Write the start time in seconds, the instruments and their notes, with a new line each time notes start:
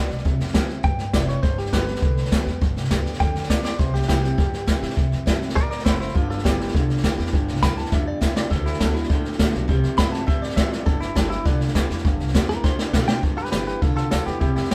Already playing: steel-string acoustic guitar B2, clean electric guitar D5
0.10 upright bass B1, snare
0.18 snare
0.25 upright bass C2, steel-string acoustic guitar C3, kick, snare
0.40 upright bass F2, snare
0.47 snare
0.53 steel-string acoustic guitar E3 G3 C4 E4, kick, snare, hi-hat pedal
0.68 steel-string acoustic guitar C4 E4, snare
0.83 steel-string acoustic guitar G2, upright bass A2, clean electric guitar G5, kick, snare
0.98 snare
1.13 upright bass F1, steel-string acoustic guitar E3 G3 C4 E4, clean electric guitar D5, kick, snare, hi-hat pedal
1.28 steel-string acoustic guitar C4 E4, clean electric guitar C#5, snare
1.43 upright bass G1, steel-string acoustic guitar G2, clean electric guitar C5, kick, snare
1.58 clean electric guitar G4, snare
1.66 snare
1.72 upright bass G1, steel-string acoustic guitar D3 G3 B3 G4, clean electric guitar B4, kick, snare, hi-hat pedal
1.87 steel-string acoustic guitar B3 G4, snare
1.95 snare
2.02 upright bass C2, steel-string acoustic guitar D3, kick, snare
2.17 snare
2.25 snare
2.31 upright bass D2, steel-string acoustic guitar D3 G3 B3 G4, kick, snare, hi-hat pedal
2.46 upright bass E2, steel-string acoustic guitar B3 G4, snare
2.61 upright bass G1, steel-string acoustic guitar G2, kick, snare
2.76 upright bass C2, snare
2.84 snare
2.90 upright bass D2, steel-string acoustic guitar D3 G3 B3 G4, kick, snare, hi-hat pedal
3.06 snare
3.13 snare
3.20 upright bass F2, steel-string acoustic guitar D3, clean electric guitar G5, kick, snare
3.35 snare
3.43 snare
3.49 upright bass E2, steel-string acoustic guitar D3 G3 B3 G4, clean electric guitar D5, kick, snare, hi-hat pedal
3.63 steel-string acoustic guitar B3 G4, clean electric guitar D5, snare
3.79 upright bass C2, steel-string acoustic guitar C3, clean electric guitar C5, kick, snare
3.94 clean electric guitar G4, snare
4.02 snare
4.08 upright bass C2, steel-string acoustic guitar E3 G3 C4 E4, clean electric guitar G4, kick, snare, hi-hat pedal
4.22 steel-string acoustic guitar C4 E4, snare
4.38 upright bass F2, steel-string acoustic guitar G2, kick, snare
4.53 snare
4.66 upright bass G2, steel-string acoustic guitar E3 G3 C4 E4, kick, snare, hi-hat pedal
4.80 upright bass A2, steel-string acoustic guitar C4 E4, snare
4.90 snare
4.96 upright bass C2, steel-string acoustic guitar C3, kick, snare
5.12 upright bass F2, snare
5.26 upright bass G2, steel-string acoustic guitar E3 G3 C4 E4, kick, snare, hi-hat pedal
5.40 steel-string acoustic guitar C4 E4, snare
5.49 snare
5.55 upright bass A2, clean electric guitar A#4 D5, kick, snare
5.70 clean electric guitar A#4 D5, snare
5.78 snare
5.85 upright bass F#1, steel-string acoustic guitar A2, clean electric guitar E4 C5, kick, snare, hi-hat pedal
6.00 clean electric guitar E4 C5, snare
6.08 snare
6.15 upright bass G1, clean electric guitar G2 D3 F4 A4, steel-string acoustic guitar G2, kick, snare
6.30 clean electric guitar F4 A4, snare
6.38 snare
6.44 upright bass G1, clean electric guitar G2 E3 G4, steel-string acoustic guitar D3 G3 B3 G4, kick, snare, hi-hat pedal
6.58 steel-string acoustic guitar B3 G4, snare
6.67 snare
6.73 upright bass C2, clean electric guitar G2 D3, steel-string acoustic guitar D3, kick, snare
6.90 snare
6.97 snare
7.03 upright bass D2, clean electric guitar G2 E3, steel-string acoustic guitar D3 G3 B3 G4, kick, snare, hi-hat pedal
7.18 upright bass E2, steel-string acoustic guitar B3 G4, snare
7.26 snare
7.33 upright bass G1, steel-string acoustic guitar G2, clean electric guitar G2 D3, kick, snare
7.48 upright bass C2, snare
7.55 snare
7.62 upright bass D2, clean electric guitar G2 E3 B5, steel-string acoustic guitar D3 G3 B3 G4, kick, snare, hi-hat pedal
7.77 steel-string acoustic guitar B3 G4, clean electric guitar A5, snare
7.85 snare
7.92 upright bass F2, clean electric guitar G2 D3 E5, steel-string acoustic guitar B2, kick, snare
8.08 clean electric guitar D5
8.21 upright bass E2, clean electric guitar G2 E3 E5, steel-string acoustic guitar C3, kick, snare, hi-hat pedal
8.36 clean electric guitar D5, snare
8.50 upright bass D2, steel-string acoustic guitar D3, clean electric guitar D3 A3 A4, kick, snare
8.66 clean electric guitar E4, snare
8.73 snare
8.79 upright bass D2, steel-string acoustic guitar D3 A3 D4 F#4, clean electric guitar D3 B3 A4, kick, snare, hi-hat pedal
8.94 steel-string acoustic guitar D4 F#4, clean electric guitar E4, snare
9.03 snare
9.09 upright bass G2, steel-string acoustic guitar A2, clean electric guitar D3 A3 D4, kick, snare
9.25 snare
9.32 snare
9.39 upright bass A2, steel-string acoustic guitar D3 A3 D4 F#4, clean electric guitar D3 B3, kick, snare, hi-hat pedal
9.53 upright bass B1, steel-string acoustic guitar D4 F#4, snare
9.68 upright bass C2, steel-string acoustic guitar C3, clean electric guitar C3 G3, kick, snare
9.83 upright bass F2, snare
9.97 upright bass G2, clean electric guitar C3 A3 B5, steel-string acoustic guitar E3 G3 C4 E4, kick, snare, hi-hat pedal
10.12 steel-string acoustic guitar C4 E4, clean electric guitar A5, snare
10.26 steel-string acoustic guitar G2, upright bass A2, clean electric guitar C3 G3 E5, kick, snare
10.42 clean electric guitar D5, snare
10.50 snare
10.56 upright bass A2, clean electric guitar C3 A3 E5, steel-string acoustic guitar E3 G3 C4 E4, kick, snare, hi-hat pedal
10.71 steel-string acoustic guitar C4 E4, clean electric guitar D5, snare
10.86 upright bass G1, clean electric guitar G2 D3 A4, steel-string acoustic guitar G2, kick, snare
11.01 clean electric guitar E4, snare
11.15 upright bass G1, clean electric guitar G2 E3 A4, steel-string acoustic guitar D3 G3 B3 G4, kick, snare, hi-hat pedal
11.30 steel-string acoustic guitar B3 G4, clean electric guitar E4, snare
11.45 upright bass C2, clean electric guitar G2 D3 D4, steel-string acoustic guitar D3, kick, snare
11.60 snare
11.68 snare
11.74 upright bass D2, clean electric guitar G2 E3, steel-string acoustic guitar D3 G3 B3 G4, kick, snare, hi-hat pedal
11.90 upright bass E2, steel-string acoustic guitar B3 G4, snare
11.98 snare
12.05 upright bass G1, clean electric guitar G2 D3, steel-string acoustic guitar G2, kick, snare
12.20 upright bass C2, snare
12.28 snare
12.34 upright bass E2, clean electric guitar G2 E3, steel-string acoustic guitar D3 G3 B3 G4, kick, snare, hi-hat pedal
12.49 steel-string acoustic guitar B3 G4, clean electric guitar A#4, snare
12.63 upright bass D2, clean electric guitar D3 A3 C5, steel-string acoustic guitar D3, kick, snare
12.79 clean electric guitar D5, snare
12.93 upright bass B2, clean electric guitar D3 B3 F5, steel-string acoustic guitar D3 A3 D4 F#4, kick, snare, hi-hat pedal
13.07 steel-string acoustic guitar F#4, clean electric guitar G5, snare
13.23 upright bass G1, clean electric guitar G2 D3, steel-string acoustic guitar G2, kick, snare
13.37 clean electric guitar G4 B4, snare
13.45 snare
13.51 upright bass G1, clean electric guitar G2 E3 G4 B4, steel-string acoustic guitar D3 G3 B3 G4, snare, hi-hat pedal
13.66 steel-string acoustic guitar B3 G4, clean electric guitar G4 B4, snare
13.81 upright bass C2, clean electric guitar G2 D3 F4 A4, steel-string acoustic guitar D3, kick, snare
13.96 clean electric guitar F4 A4, snare
14.11 upright bass D2, clean electric guitar G2 E3 F4 A4, steel-string acoustic guitar D3 G3 B3 G4, snare, hi-hat pedal
14.26 upright bass E2, clean electric guitar B3 G4, snare
14.40 upright bass C2, clean electric guitar C3 G3 E4 G4, steel-string acoustic guitar C3, kick, snare
14.56 upright bass F2, clean electric guitar E4 G4, snare
14.64 snare
14.70 upright bass G2, clean electric guitar C3 A3 G4, steel-string acoustic guitar E3 G3, snare, hi-hat pedal